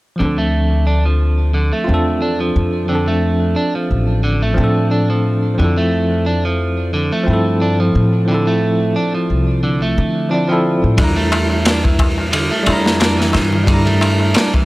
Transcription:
0.16 clean electric guitar D3, tine electric piano F3 C4
0.20 upright bass D2, tine electric piano D4
0.25 tine electric piano A4
0.38 clean electric guitar A3
0.87 clean electric guitar D4
1.05 clean electric guitar F3
1.54 clean electric guitar D3
1.73 clean electric guitar A3
1.84 tine electric piano C4 F4
1.89 upright bass E2, tine electric piano D4
1.94 tine electric piano A4
2.22 clean electric guitar D4
2.40 clean electric guitar F3
2.56 upright bass F2
2.86 clean electric guitar D3, tine electric piano F3 C4
2.92 tine electric piano D4 A4
3.08 clean electric guitar A3
3.56 clean electric guitar D4
3.75 clean electric guitar F3
3.91 upright bass A1
4.24 clean electric guitar D3
4.42 clean electric guitar A3
4.54 upright bass A2, tine electric piano F3 C4
4.60 tine electric piano D4 A4
4.91 clean electric guitar D4
5.10 clean electric guitar F3
5.55 tine electric piano F3 C4
5.59 upright bass F2, clean electric guitar D3, tine electric piano E4
5.64 tine electric piano A4
5.78 clean electric guitar A3
6.26 clean electric guitar D4
6.45 clean electric guitar F3
6.94 clean electric guitar D3
7.12 clean electric guitar A3
7.23 tine electric piano F3 C4
7.28 upright bass G2, tine electric piano E4
7.33 tine electric piano A4
7.62 clean electric guitar D4
7.80 clean electric guitar F3
7.95 upright bass A2
8.25 clean electric guitar D3, tine electric piano F3 C4
8.31 tine electric piano E4 A4
8.47 clean electric guitar A3
8.96 clean electric guitar D4
9.15 clean electric guitar F3
9.30 upright bass C2
9.63 clean electric guitar D3
9.82 clean electric guitar A3
9.98 upright bass D3
10.29 tine electric piano F3 C4 E4, clean electric guitar D4
10.34 tine electric piano D5
10.48 tine electric piano F3 C4 E4, clean electric guitar F3
10.53 tine electric piano A4
10.84 upright bass A2
10.94 clean electric guitar D3, tine electric piano G3 D4, kick, ride, darbuka tek
10.98 upright bass E2, tine electric piano E4
11.04 tine electric piano A#5
11.16 clean electric guitar A3
11.32 ride, darbuka tek
11.50 darbuka tek
11.65 clean electric guitar D4, snare, ride, darbuka tek
11.84 clean electric guitar E3, kick, darbuka tek
11.99 kick, ride, darbuka tek
12.18 darbuka tek
12.33 clean electric guitar D3, ride, darbuka tek
12.51 clean electric guitar A3
12.63 tine electric piano G3 D4, ride
12.67 upright bass F2, tine electric piano E4, darbuka tek
12.73 tine electric piano A#5
12.86 snare, darbuka tek
13.00 clean electric guitar D4, snare, ride, darbuka tek
13.19 clean electric guitar E3, snare
13.33 upright bass G2, snare, ride, darbuka tek
13.52 darbuka tek, darbuka dum
13.64 clean electric guitar D3, tine electric piano G3 D4, kick, ride
13.68 tine electric piano E4, darbuka tek
13.74 tine electric piano A#5
13.86 clean electric guitar A3, ride, darbuka dum
14.01 ride, darbuka tek
14.20 darbuka tek
14.34 clean electric guitar D4, snare, ride, darbuka tek
14.54 clean electric guitar E3, kick, darbuka tek

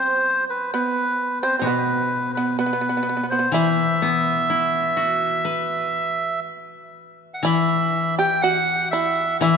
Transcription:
Already playing: koto F#3, shamisen C4, melodica C5
0.50 melodica B4
0.74 shamisen B3, melodica B4
1.42 shamisen C4, melodica C5
1.57 shamisen C4, melodica C5
1.62 koto B2, melodica B4
1.67 shamisen B3
2.34 shamisen B3, melodica B4
2.59 shamisen B3, melodica B4
2.66 shamisen B3
2.73 shamisen B3
2.81 shamisen B3
2.89 shamisen B3
2.97 shamisen B3
3.03 shamisen B3
3.09 shamisen B3
3.17 shamisen B3
3.23 shamisen B3
3.30 shamisen B3, melodica C5
3.39 shamisen B3
3.52 koto E3, shamisen E4, melodica E5
4.02 koto B3
4.50 koto E4
4.92 shamisen D#4
4.97 koto F#4
5.10 shamisen D4
5.28 shamisen C#4
5.45 shamisen C4, koto B4
7.34 melodica F#5
7.43 koto E3, shamisen E4, melodica E5
8.19 shamisen G4, melodica G5
8.42 shamisen F#4, melodica F#5
8.91 shamisen E4, melodica E5
9.41 koto E3, shamisen E4, melodica E5

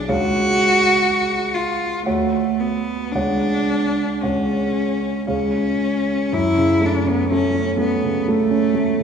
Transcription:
Already playing: grand piano B1 G#4 D5 G#5, cello D4
0.08 grand piano C#2 G#4 C#5 F5, cello F#4
1.54 cello F4
2.06 grand piano D2 F#4 C#5 F#5, cello A3
2.60 cello B3
3.12 grand piano C#2 G#4 C#5 F#5, cello D4
4.22 grand piano C#2 G#4 C#5 F#5, cello C#4
5.27 grand piano C#2 G#4 C#5 F5, cello C#4
6.33 grand piano F#2, cello E4
6.57 grand piano C#3
6.81 grand piano A3
6.86 cello D4
7.05 cello B3, grand piano C#4
7.31 grand piano A3, cello C#4
7.54 grand piano C#4
7.78 grand piano A3, cello B3
8.04 grand piano C#3
8.27 cello A3, grand piano A3
8.50 grand piano C#4
8.74 grand piano A3
9.00 grand piano C#3

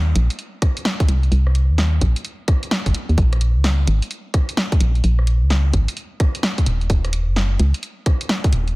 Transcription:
Already playing: fm bass D#2
0.16 fm bass A#1, closed hi-hat
0.30 closed hi-hat
0.39 closed hi-hat
0.62 kick, cross-stick, closed hi-hat
0.77 closed hi-hat
0.85 snare
1.00 kick, closed hi-hat
1.08 fm bass C2, closed hi-hat
1.23 closed hi-hat
1.32 fm bass C2, closed hi-hat
1.47 cross-stick
1.55 closed hi-hat
1.70 fm bass D#2
1.78 snare
2.01 fm bass A#1, kick, closed hi-hat
2.16 closed hi-hat
2.25 closed hi-hat
2.48 kick, cross-stick, closed hi-hat
2.63 closed hi-hat
2.71 snare
2.86 fm bass G1, kick, closed hi-hat
2.94 closed hi-hat
3.09 fm bass D#2, closed hi-hat
3.18 fm bass A#1, kick, closed hi-hat
3.33 cross-stick, closed hi-hat
3.41 closed hi-hat
3.56 fm bass C#2
3.64 snare
3.87 fm bass G#1, closed hi-hat
4.02 closed hi-hat
4.11 closed hi-hat
4.34 kick, cross-stick, closed hi-hat
4.49 closed hi-hat
4.57 snare
4.72 kick, closed hi-hat
4.80 fm bass A#1, closed hi-hat
4.95 closed hi-hat
5.04 fm bass A#1, closed hi-hat
5.19 cross-stick
5.27 closed hi-hat
5.42 fm bass C#2
5.50 snare
5.74 fm bass G#1, kick, closed hi-hat
5.88 closed hi-hat
5.97 closed hi-hat
6.20 kick, cross-stick, closed hi-hat
6.35 closed hi-hat
6.43 snare
6.58 kick, closed hi-hat
6.66 fm bass D#1, closed hi-hat
6.81 closed hi-hat
6.90 fm bass D#1, kick, closed hi-hat
7.05 cross-stick, closed hi-hat
7.13 closed hi-hat
7.28 fm bass F#1
7.36 snare
7.59 fm bass C#2, closed hi-hat
7.74 closed hi-hat
7.83 closed hi-hat
8.06 kick, cross-stick, closed hi-hat
8.21 closed hi-hat
8.29 snare
8.44 kick, closed hi-hat
8.53 fm bass D#1, closed hi-hat
8.68 closed hi-hat

